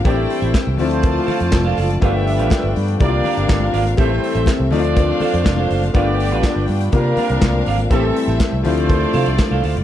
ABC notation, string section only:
X:1
M:4/4
L:1/8
Q:1/4=122
K:Dm
V:1 name="String section"
[Ecg]3 [Fda]4- [Fda] | [D=Bg]4 [D_Bf]4 | [CAe]3 [Dcf]4- [Dcf] | [D=Bg]4 [D_Bf]4 |
[CAe]3 [A,Fd]4- [A,Fd] |]